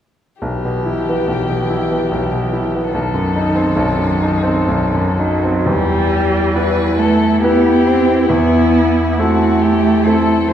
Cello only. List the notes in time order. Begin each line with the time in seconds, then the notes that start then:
0.41 E3
2.93 D#3
5.17 F#3
5.65 G3
6.97 A3
7.41 B3
7.86 C4
8.30 B3
9.11 B3
9.17 A3
10.49 F#3